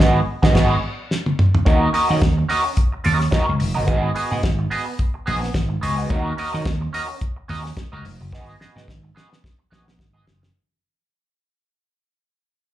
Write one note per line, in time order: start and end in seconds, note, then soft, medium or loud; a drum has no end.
0.00 0.19 G#1 loud
0.00 0.20 B3 loud
0.00 0.20 F#4 loud
0.00 0.19 G#4 medium
0.00 0.19 D#5 medium
0.00 kick loud
0.00 snare loud
0.42 0.53 G#1 loud
0.42 0.53 B3 loud
0.42 0.53 F#4 loud
0.42 0.54 G#4 loud
0.42 0.54 D#5 loud
0.42 kick loud
0.42 snare loud
0.54 0.75 G#1 loud
0.54 0.74 B3 loud
0.54 0.74 F#4 loud
0.54 0.75 G#4 loud
0.54 0.75 D#5 loud
0.54 kick loud
0.54 snare loud
0.54 crash medium
1.11 snare medium
1.26 high tom medium
1.39 mid tom loud
1.55 floor tom loud
1.65 1.88 D#2 loud
1.65 1.88 C#4 medium
1.65 1.88 F#4 medium
1.65 1.88 A#4 medium
1.65 1.89 D#5 medium
1.65 kick loud
1.65 closed hi-hat medium
1.93 2.10 C#4 medium
1.93 2.09 F#4 medium
1.93 2.08 A#4 medium
1.93 2.08 D#5 medium
1.93 open hi-hat medium
2.09 2.19 D#3 loud
2.09 2.20 C#4 medium
2.09 2.20 F#4 medium
2.09 2.21 A#4 medium
2.09 2.21 D#5 medium
2.21 2.43 D#2 loud
2.21 muted clean electric guitar stroke soft
2.21 kick loud
2.21 snare loud
2.21 closed hi-hat medium
2.37 muted clean electric guitar stroke soft
2.48 2.71 C#4 medium
2.48 2.65 F#4 medium
2.48 2.64 A#4 medium
2.48 2.63 D#5 medium
2.48 open hi-hat medium
2.64 muted clean electric guitar stroke soft
2.77 kick loud
2.77 closed hi-hat medium
2.92 muted clean electric guitar stroke soft
3.04 3.27 D#2 medium
3.04 3.27 C#4 medium
3.04 3.20 F#4 medium
3.04 3.19 A#4 medium
3.04 3.18 D#5 medium
3.04 open hi-hat medium
3.20 muted clean electric guitar stroke soft
3.20 snare soft
3.31 3.54 C#4 medium
3.31 3.47 F#4 loud
3.31 3.46 A#4 loud
3.31 3.45 D#5 loud
3.31 kick loud
3.31 snare loud
3.31 closed hi-hat medium
3.47 3.58 C#2 medium
3.47 muted clean electric guitar stroke medium
3.59 3.73 F1 medium
3.59 muted clean electric guitar stroke soft
3.59 open hi-hat medium
3.74 3.86 F#1 medium
3.74 3.86 C#4 medium
3.74 3.86 F#4 medium
3.74 3.87 A#4 medium
3.74 3.87 D#5 medium
3.86 4.09 G#1 loud
3.86 4.09 B3 medium
3.86 4.10 F#4 loud
3.86 4.10 G#4 loud
3.86 4.10 D#5 loud
3.86 kick loud
3.86 closed hi-hat medium
4.15 4.31 B3 medium
4.15 4.31 F#4 medium
4.15 4.30 G#4 medium
4.15 4.29 D#5 medium
4.15 open hi-hat medium
4.30 4.41 G#2 loud
4.30 4.42 B3 medium
4.30 4.43 F#4 medium
4.30 4.42 G#4 medium
4.30 4.43 D#5 medium
4.43 4.65 G#1 loud
4.43 muted clean electric guitar stroke soft
4.43 kick loud
4.43 snare loud
4.43 closed hi-hat medium
4.59 muted clean electric guitar stroke soft
4.70 4.93 B3 medium
4.70 4.86 F#4 medium
4.70 4.86 G#4 loud
4.70 4.85 D#5 medium
4.70 open hi-hat medium
4.86 muted clean electric guitar stroke soft
4.99 kick loud
4.99 closed hi-hat medium
5.14 muted clean electric guitar stroke soft
5.26 5.49 A#1 loud
5.26 5.49 B3 medium
5.26 5.41 F#4 medium
5.26 5.40 G#4 loud
5.26 5.40 D#5 medium
5.26 open hi-hat medium
5.41 muted clean electric guitar stroke medium
5.41 snare soft
5.53 5.76 G#1 medium
5.53 muted clean electric guitar stroke soft
5.53 kick loud
5.53 snare loud
5.53 closed hi-hat medium
5.69 muted clean electric guitar stroke medium
5.81 6.04 C#2 medium
5.81 5.97 B3 medium
5.81 5.97 F#4 medium
5.81 5.96 G#4 medium
5.81 5.95 D#5 medium
5.81 open hi-hat medium
5.96 6.09 B3 medium
5.96 6.09 F#4 medium
5.96 6.10 G#4 medium
5.96 6.10 D#5 medium
6.10 6.32 D#2 loud
6.10 6.32 C#4 medium
6.10 6.32 F#4 medium
6.10 6.33 A#4 medium
6.10 6.33 D#5 medium
6.10 kick loud
6.10 closed hi-hat medium
6.37 6.53 C#4 medium
6.37 6.53 F#4 medium
6.37 6.52 A#4 medium
6.37 6.51 D#5 medium
6.37 open hi-hat medium
6.53 6.63 D#3 medium
6.53 6.64 C#4 medium
6.53 6.65 F#4 medium
6.53 6.65 A#4 medium
6.53 6.65 D#5 medium
6.65 6.87 D#2 loud
6.65 muted clean electric guitar stroke soft
6.65 kick loud
6.65 snare loud
6.65 closed hi-hat medium
6.81 muted clean electric guitar stroke soft
6.93 7.15 C#4 medium
6.93 7.09 F#4 medium
6.93 7.08 A#4 medium
6.93 7.07 D#5 medium
6.93 open hi-hat medium
7.08 muted clean electric guitar stroke soft
7.21 kick loud
7.21 closed hi-hat medium
7.36 muted clean electric guitar stroke soft
7.48 7.71 D#2 loud
7.48 7.71 C#4 medium
7.48 7.64 F#4 medium
7.48 7.64 A#4 medium
7.48 7.63 D#5 loud
7.48 open hi-hat medium
7.64 muted clean electric guitar stroke soft
7.64 snare soft
7.76 muted clean electric guitar stroke soft
7.76 kick loud
7.76 snare loud
7.76 closed hi-hat medium
7.92 8.02 C#2 loud
7.92 8.04 C#4 medium
7.92 8.05 F#4 medium
7.92 8.05 A#4 medium
7.92 8.06 D#5 medium
8.05 8.17 F1 loud
8.05 muted clean electric guitar stroke soft
8.05 open hi-hat medium
8.21 8.30 F#1 medium
8.21 muted clean electric guitar stroke medium
8.33 8.55 B3 medium
8.33 8.55 F#4 medium
8.33 8.55 G#4 medium
8.33 8.56 D#5 medium
8.33 kick loud
8.33 snare medium
8.60 8.76 B3 medium
8.60 8.76 F#4 medium
8.60 8.75 G#4 medium
8.60 8.74 D#5 medium
8.60 snare medium
8.76 8.85 G#2 loud
8.76 8.87 B3 medium
8.76 8.87 F#4 soft
8.76 8.88 G#4 medium
8.76 8.88 D#5 medium
8.76 snare medium
8.88 9.10 G#1 loud
8.88 muted clean electric guitar stroke soft
8.88 kick loud
8.88 snare medium
9.03 muted clean electric guitar stroke soft
9.15 9.37 B3 medium
9.15 9.31 F#4 medium
9.15 9.30 G#4 loud
9.15 9.29 D#5 medium
9.15 snare medium
9.30 muted clean electric guitar stroke soft
9.30 snare medium
9.44 kick loud
9.44 snare medium
9.59 muted clean electric guitar stroke soft
9.70 10.01 A#1 loud
9.70 9.93 B3 medium
9.70 9.86 F#4 medium
9.70 9.85 G#4 medium
9.70 9.85 D#5 medium
9.70 snare medium
9.86 muted clean electric guitar stroke soft
9.86 snare medium
9.98 10.21 G#1 medium
9.98 muted clean electric guitar stroke soft
9.98 kick loud
9.98 snare loud
10.13 10.25 B3 medium
10.13 10.25 F#4 medium
10.13 10.26 G#4 medium
10.13 10.26 D#5 medium
10.26 10.48 F#1 medium
10.26 muted clean electric guitar stroke soft
10.26 snare loud
10.42 muted clean electric guitar stroke soft
10.42 snare medium